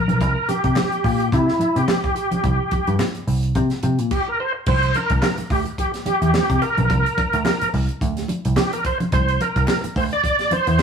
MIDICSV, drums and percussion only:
0, 0, Header, 1, 2, 480
1, 0, Start_track
1, 0, Tempo, 557103
1, 178, Time_signature, 4, 2, 24, 8
1, 9326, End_track
2, 0, Start_track
2, 0, Title_t, "Drums"
2, 69, Note_on_c, 9, 63, 74
2, 77, Note_on_c, 9, 42, 44
2, 155, Note_off_c, 9, 63, 0
2, 163, Note_off_c, 9, 42, 0
2, 177, Note_on_c, 9, 62, 63
2, 178, Note_on_c, 9, 36, 92
2, 182, Note_on_c, 9, 42, 83
2, 263, Note_off_c, 9, 62, 0
2, 264, Note_off_c, 9, 36, 0
2, 268, Note_off_c, 9, 42, 0
2, 421, Note_on_c, 9, 42, 68
2, 422, Note_on_c, 9, 62, 56
2, 507, Note_off_c, 9, 42, 0
2, 508, Note_off_c, 9, 62, 0
2, 550, Note_on_c, 9, 42, 52
2, 552, Note_on_c, 9, 36, 86
2, 636, Note_off_c, 9, 42, 0
2, 638, Note_off_c, 9, 36, 0
2, 655, Note_on_c, 9, 63, 88
2, 656, Note_on_c, 9, 38, 108
2, 656, Note_on_c, 9, 39, 108
2, 741, Note_off_c, 9, 63, 0
2, 742, Note_off_c, 9, 38, 0
2, 742, Note_off_c, 9, 39, 0
2, 793, Note_on_c, 9, 42, 35
2, 879, Note_off_c, 9, 42, 0
2, 899, Note_on_c, 9, 36, 93
2, 901, Note_on_c, 9, 46, 66
2, 985, Note_off_c, 9, 36, 0
2, 987, Note_off_c, 9, 46, 0
2, 1034, Note_on_c, 9, 42, 49
2, 1121, Note_off_c, 9, 42, 0
2, 1137, Note_on_c, 9, 62, 31
2, 1137, Note_on_c, 9, 64, 74
2, 1140, Note_on_c, 9, 36, 97
2, 1147, Note_on_c, 9, 42, 82
2, 1224, Note_off_c, 9, 62, 0
2, 1224, Note_off_c, 9, 64, 0
2, 1226, Note_off_c, 9, 36, 0
2, 1233, Note_off_c, 9, 42, 0
2, 1279, Note_on_c, 9, 38, 31
2, 1365, Note_off_c, 9, 38, 0
2, 1372, Note_on_c, 9, 62, 58
2, 1384, Note_on_c, 9, 42, 74
2, 1458, Note_off_c, 9, 62, 0
2, 1470, Note_off_c, 9, 42, 0
2, 1519, Note_on_c, 9, 42, 63
2, 1605, Note_off_c, 9, 42, 0
2, 1613, Note_on_c, 9, 63, 75
2, 1623, Note_on_c, 9, 38, 112
2, 1625, Note_on_c, 9, 39, 99
2, 1699, Note_off_c, 9, 63, 0
2, 1709, Note_off_c, 9, 38, 0
2, 1712, Note_off_c, 9, 39, 0
2, 1757, Note_on_c, 9, 36, 100
2, 1761, Note_on_c, 9, 42, 41
2, 1843, Note_off_c, 9, 36, 0
2, 1847, Note_off_c, 9, 42, 0
2, 1859, Note_on_c, 9, 42, 64
2, 1945, Note_off_c, 9, 42, 0
2, 1993, Note_on_c, 9, 63, 86
2, 1995, Note_on_c, 9, 42, 49
2, 2079, Note_off_c, 9, 63, 0
2, 2081, Note_off_c, 9, 42, 0
2, 2100, Note_on_c, 9, 36, 103
2, 2100, Note_on_c, 9, 62, 61
2, 2101, Note_on_c, 9, 42, 85
2, 2186, Note_off_c, 9, 62, 0
2, 2187, Note_off_c, 9, 36, 0
2, 2188, Note_off_c, 9, 42, 0
2, 2337, Note_on_c, 9, 42, 72
2, 2341, Note_on_c, 9, 36, 103
2, 2342, Note_on_c, 9, 62, 62
2, 2424, Note_off_c, 9, 42, 0
2, 2428, Note_off_c, 9, 36, 0
2, 2428, Note_off_c, 9, 62, 0
2, 2475, Note_on_c, 9, 42, 50
2, 2561, Note_off_c, 9, 42, 0
2, 2576, Note_on_c, 9, 63, 83
2, 2579, Note_on_c, 9, 38, 111
2, 2584, Note_on_c, 9, 39, 112
2, 2662, Note_off_c, 9, 63, 0
2, 2665, Note_off_c, 9, 38, 0
2, 2670, Note_off_c, 9, 39, 0
2, 2712, Note_on_c, 9, 42, 41
2, 2799, Note_off_c, 9, 42, 0
2, 2823, Note_on_c, 9, 46, 68
2, 2909, Note_off_c, 9, 46, 0
2, 2953, Note_on_c, 9, 42, 42
2, 3039, Note_off_c, 9, 42, 0
2, 3060, Note_on_c, 9, 42, 88
2, 3061, Note_on_c, 9, 36, 84
2, 3062, Note_on_c, 9, 62, 34
2, 3147, Note_off_c, 9, 36, 0
2, 3147, Note_off_c, 9, 42, 0
2, 3148, Note_off_c, 9, 62, 0
2, 3188, Note_on_c, 9, 42, 33
2, 3191, Note_on_c, 9, 38, 30
2, 3274, Note_off_c, 9, 42, 0
2, 3277, Note_off_c, 9, 38, 0
2, 3297, Note_on_c, 9, 42, 71
2, 3300, Note_on_c, 9, 62, 54
2, 3383, Note_off_c, 9, 42, 0
2, 3387, Note_off_c, 9, 62, 0
2, 3435, Note_on_c, 9, 42, 64
2, 3521, Note_off_c, 9, 42, 0
2, 3541, Note_on_c, 9, 49, 78
2, 3542, Note_on_c, 9, 36, 99
2, 3627, Note_off_c, 9, 49, 0
2, 3628, Note_off_c, 9, 36, 0
2, 4018, Note_on_c, 9, 49, 91
2, 4021, Note_on_c, 9, 36, 113
2, 4033, Note_on_c, 9, 62, 63
2, 4104, Note_off_c, 9, 49, 0
2, 4108, Note_off_c, 9, 36, 0
2, 4119, Note_off_c, 9, 62, 0
2, 4157, Note_on_c, 9, 42, 52
2, 4243, Note_off_c, 9, 42, 0
2, 4259, Note_on_c, 9, 42, 76
2, 4269, Note_on_c, 9, 62, 58
2, 4345, Note_off_c, 9, 42, 0
2, 4355, Note_off_c, 9, 62, 0
2, 4391, Note_on_c, 9, 42, 61
2, 4396, Note_on_c, 9, 36, 90
2, 4477, Note_off_c, 9, 42, 0
2, 4482, Note_off_c, 9, 36, 0
2, 4499, Note_on_c, 9, 63, 92
2, 4500, Note_on_c, 9, 38, 120
2, 4502, Note_on_c, 9, 39, 109
2, 4585, Note_off_c, 9, 63, 0
2, 4587, Note_off_c, 9, 38, 0
2, 4588, Note_off_c, 9, 39, 0
2, 4632, Note_on_c, 9, 42, 55
2, 4718, Note_off_c, 9, 42, 0
2, 4741, Note_on_c, 9, 36, 103
2, 4741, Note_on_c, 9, 46, 70
2, 4827, Note_off_c, 9, 46, 0
2, 4828, Note_off_c, 9, 36, 0
2, 4872, Note_on_c, 9, 42, 45
2, 4958, Note_off_c, 9, 42, 0
2, 4981, Note_on_c, 9, 62, 34
2, 4982, Note_on_c, 9, 36, 87
2, 4986, Note_on_c, 9, 42, 90
2, 5067, Note_off_c, 9, 62, 0
2, 5069, Note_off_c, 9, 36, 0
2, 5072, Note_off_c, 9, 42, 0
2, 5117, Note_on_c, 9, 42, 53
2, 5120, Note_on_c, 9, 38, 31
2, 5203, Note_off_c, 9, 42, 0
2, 5206, Note_off_c, 9, 38, 0
2, 5216, Note_on_c, 9, 62, 60
2, 5221, Note_on_c, 9, 42, 74
2, 5302, Note_off_c, 9, 62, 0
2, 5307, Note_off_c, 9, 42, 0
2, 5358, Note_on_c, 9, 42, 57
2, 5444, Note_off_c, 9, 42, 0
2, 5460, Note_on_c, 9, 63, 81
2, 5462, Note_on_c, 9, 38, 107
2, 5471, Note_on_c, 9, 39, 106
2, 5546, Note_off_c, 9, 63, 0
2, 5548, Note_off_c, 9, 38, 0
2, 5558, Note_off_c, 9, 39, 0
2, 5598, Note_on_c, 9, 36, 107
2, 5601, Note_on_c, 9, 42, 69
2, 5684, Note_off_c, 9, 36, 0
2, 5687, Note_off_c, 9, 42, 0
2, 5703, Note_on_c, 9, 42, 69
2, 5789, Note_off_c, 9, 42, 0
2, 5837, Note_on_c, 9, 42, 45
2, 5837, Note_on_c, 9, 63, 76
2, 5923, Note_off_c, 9, 42, 0
2, 5923, Note_off_c, 9, 63, 0
2, 5944, Note_on_c, 9, 36, 107
2, 5944, Note_on_c, 9, 42, 79
2, 5945, Note_on_c, 9, 62, 66
2, 6030, Note_off_c, 9, 36, 0
2, 6031, Note_off_c, 9, 42, 0
2, 6031, Note_off_c, 9, 62, 0
2, 6084, Note_on_c, 9, 42, 46
2, 6170, Note_off_c, 9, 42, 0
2, 6181, Note_on_c, 9, 62, 65
2, 6185, Note_on_c, 9, 36, 102
2, 6185, Note_on_c, 9, 42, 77
2, 6267, Note_off_c, 9, 62, 0
2, 6271, Note_off_c, 9, 36, 0
2, 6271, Note_off_c, 9, 42, 0
2, 6317, Note_on_c, 9, 42, 57
2, 6403, Note_off_c, 9, 42, 0
2, 6416, Note_on_c, 9, 63, 86
2, 6424, Note_on_c, 9, 38, 114
2, 6424, Note_on_c, 9, 39, 113
2, 6502, Note_off_c, 9, 63, 0
2, 6510, Note_off_c, 9, 38, 0
2, 6510, Note_off_c, 9, 39, 0
2, 6560, Note_on_c, 9, 42, 61
2, 6647, Note_off_c, 9, 42, 0
2, 6666, Note_on_c, 9, 46, 70
2, 6753, Note_off_c, 9, 46, 0
2, 6796, Note_on_c, 9, 42, 44
2, 6883, Note_off_c, 9, 42, 0
2, 6903, Note_on_c, 9, 62, 31
2, 6904, Note_on_c, 9, 36, 93
2, 6909, Note_on_c, 9, 42, 92
2, 6989, Note_off_c, 9, 62, 0
2, 6990, Note_off_c, 9, 36, 0
2, 6995, Note_off_c, 9, 42, 0
2, 7037, Note_on_c, 9, 42, 53
2, 7040, Note_on_c, 9, 38, 34
2, 7123, Note_off_c, 9, 42, 0
2, 7127, Note_off_c, 9, 38, 0
2, 7136, Note_on_c, 9, 62, 65
2, 7144, Note_on_c, 9, 42, 75
2, 7222, Note_off_c, 9, 62, 0
2, 7230, Note_off_c, 9, 42, 0
2, 7279, Note_on_c, 9, 42, 67
2, 7365, Note_off_c, 9, 42, 0
2, 7376, Note_on_c, 9, 63, 80
2, 7380, Note_on_c, 9, 38, 124
2, 7384, Note_on_c, 9, 39, 106
2, 7462, Note_off_c, 9, 63, 0
2, 7466, Note_off_c, 9, 38, 0
2, 7470, Note_off_c, 9, 39, 0
2, 7521, Note_on_c, 9, 42, 65
2, 7607, Note_off_c, 9, 42, 0
2, 7622, Note_on_c, 9, 42, 68
2, 7623, Note_on_c, 9, 36, 87
2, 7708, Note_off_c, 9, 42, 0
2, 7709, Note_off_c, 9, 36, 0
2, 7757, Note_on_c, 9, 42, 44
2, 7757, Note_on_c, 9, 63, 82
2, 7843, Note_off_c, 9, 42, 0
2, 7843, Note_off_c, 9, 63, 0
2, 7860, Note_on_c, 9, 42, 95
2, 7861, Note_on_c, 9, 36, 109
2, 7864, Note_on_c, 9, 62, 65
2, 7946, Note_off_c, 9, 42, 0
2, 7948, Note_off_c, 9, 36, 0
2, 7950, Note_off_c, 9, 62, 0
2, 7999, Note_on_c, 9, 42, 50
2, 8085, Note_off_c, 9, 42, 0
2, 8103, Note_on_c, 9, 62, 61
2, 8104, Note_on_c, 9, 42, 74
2, 8190, Note_off_c, 9, 42, 0
2, 8190, Note_off_c, 9, 62, 0
2, 8237, Note_on_c, 9, 36, 90
2, 8238, Note_on_c, 9, 42, 56
2, 8323, Note_off_c, 9, 36, 0
2, 8324, Note_off_c, 9, 42, 0
2, 8339, Note_on_c, 9, 39, 102
2, 8341, Note_on_c, 9, 63, 79
2, 8342, Note_on_c, 9, 38, 125
2, 8425, Note_off_c, 9, 39, 0
2, 8427, Note_off_c, 9, 63, 0
2, 8428, Note_off_c, 9, 38, 0
2, 8478, Note_on_c, 9, 42, 58
2, 8564, Note_off_c, 9, 42, 0
2, 8582, Note_on_c, 9, 36, 96
2, 8586, Note_on_c, 9, 46, 65
2, 8668, Note_off_c, 9, 36, 0
2, 8672, Note_off_c, 9, 46, 0
2, 8717, Note_on_c, 9, 42, 41
2, 8803, Note_off_c, 9, 42, 0
2, 8820, Note_on_c, 9, 36, 96
2, 8821, Note_on_c, 9, 62, 31
2, 8827, Note_on_c, 9, 42, 94
2, 8906, Note_off_c, 9, 36, 0
2, 8908, Note_off_c, 9, 62, 0
2, 8913, Note_off_c, 9, 42, 0
2, 8951, Note_on_c, 9, 42, 46
2, 8954, Note_on_c, 9, 38, 35
2, 9037, Note_off_c, 9, 42, 0
2, 9040, Note_off_c, 9, 38, 0
2, 9054, Note_on_c, 9, 62, 59
2, 9058, Note_on_c, 9, 42, 66
2, 9140, Note_off_c, 9, 62, 0
2, 9144, Note_off_c, 9, 42, 0
2, 9193, Note_on_c, 9, 42, 62
2, 9279, Note_off_c, 9, 42, 0
2, 9290, Note_on_c, 9, 63, 74
2, 9297, Note_on_c, 9, 38, 118
2, 9300, Note_on_c, 9, 39, 113
2, 9326, Note_off_c, 9, 38, 0
2, 9326, Note_off_c, 9, 39, 0
2, 9326, Note_off_c, 9, 63, 0
2, 9326, End_track
0, 0, End_of_file